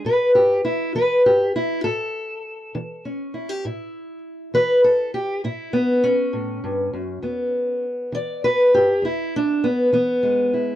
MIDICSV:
0, 0, Header, 1, 2, 480
1, 0, Start_track
1, 0, Tempo, 598146
1, 43, Time_signature, 12, 3, 24, 8
1, 8631, End_track
2, 0, Start_track
2, 0, Title_t, "Steel-string acoustic guitar"
2, 0, Program_c, 0, 25
2, 37, Note_on_c, 0, 45, 73
2, 48, Note_on_c, 0, 71, 101
2, 277, Note_off_c, 0, 71, 0
2, 280, Note_on_c, 0, 67, 81
2, 472, Note_off_c, 0, 45, 0
2, 515, Note_off_c, 0, 67, 0
2, 518, Note_on_c, 0, 64, 88
2, 760, Note_off_c, 0, 64, 0
2, 760, Note_on_c, 0, 52, 63
2, 767, Note_on_c, 0, 71, 108
2, 1004, Note_off_c, 0, 71, 0
2, 1011, Note_on_c, 0, 67, 103
2, 1193, Note_off_c, 0, 52, 0
2, 1246, Note_off_c, 0, 67, 0
2, 1249, Note_on_c, 0, 64, 100
2, 1472, Note_off_c, 0, 64, 0
2, 1476, Note_on_c, 0, 69, 102
2, 1483, Note_on_c, 0, 45, 84
2, 1914, Note_off_c, 0, 45, 0
2, 2205, Note_on_c, 0, 52, 73
2, 2438, Note_off_c, 0, 69, 0
2, 2449, Note_on_c, 0, 61, 47
2, 2635, Note_off_c, 0, 52, 0
2, 2680, Note_on_c, 0, 64, 46
2, 2801, Note_off_c, 0, 64, 0
2, 2801, Note_on_c, 0, 67, 48
2, 2897, Note_off_c, 0, 61, 0
2, 2921, Note_off_c, 0, 67, 0
2, 2927, Note_on_c, 0, 45, 80
2, 2934, Note_on_c, 0, 64, 48
2, 3356, Note_off_c, 0, 45, 0
2, 3641, Note_on_c, 0, 52, 65
2, 3648, Note_on_c, 0, 71, 114
2, 3883, Note_off_c, 0, 71, 0
2, 3886, Note_on_c, 0, 69, 105
2, 4073, Note_off_c, 0, 52, 0
2, 4121, Note_off_c, 0, 69, 0
2, 4125, Note_on_c, 0, 67, 90
2, 4363, Note_off_c, 0, 67, 0
2, 4365, Note_on_c, 0, 45, 77
2, 4370, Note_off_c, 0, 64, 0
2, 4370, Note_on_c, 0, 64, 91
2, 4599, Note_on_c, 0, 59, 93
2, 4605, Note_off_c, 0, 64, 0
2, 4795, Note_off_c, 0, 45, 0
2, 4840, Note_off_c, 0, 59, 0
2, 4844, Note_on_c, 0, 61, 97
2, 5079, Note_on_c, 0, 45, 72
2, 5320, Note_off_c, 0, 45, 0
2, 5326, Note_on_c, 0, 43, 62
2, 5561, Note_off_c, 0, 43, 0
2, 5564, Note_on_c, 0, 42, 61
2, 5794, Note_off_c, 0, 42, 0
2, 5797, Note_on_c, 0, 40, 69
2, 5802, Note_on_c, 0, 59, 55
2, 6231, Note_off_c, 0, 40, 0
2, 6282, Note_off_c, 0, 61, 0
2, 6518, Note_on_c, 0, 52, 66
2, 6538, Note_on_c, 0, 74, 105
2, 6769, Note_off_c, 0, 74, 0
2, 6774, Note_on_c, 0, 71, 114
2, 6951, Note_off_c, 0, 52, 0
2, 7007, Note_off_c, 0, 71, 0
2, 7014, Note_off_c, 0, 59, 0
2, 7017, Note_on_c, 0, 67, 97
2, 7238, Note_on_c, 0, 40, 80
2, 7249, Note_off_c, 0, 67, 0
2, 7261, Note_on_c, 0, 64, 91
2, 7491, Note_off_c, 0, 64, 0
2, 7512, Note_on_c, 0, 62, 99
2, 7671, Note_off_c, 0, 40, 0
2, 7733, Note_on_c, 0, 59, 88
2, 7736, Note_off_c, 0, 62, 0
2, 7962, Note_off_c, 0, 59, 0
2, 7964, Note_on_c, 0, 52, 69
2, 7972, Note_on_c, 0, 59, 91
2, 8208, Note_on_c, 0, 56, 48
2, 8394, Note_off_c, 0, 52, 0
2, 8446, Note_off_c, 0, 59, 0
2, 8454, Note_on_c, 0, 64, 49
2, 8631, Note_off_c, 0, 56, 0
2, 8631, Note_off_c, 0, 64, 0
2, 8631, End_track
0, 0, End_of_file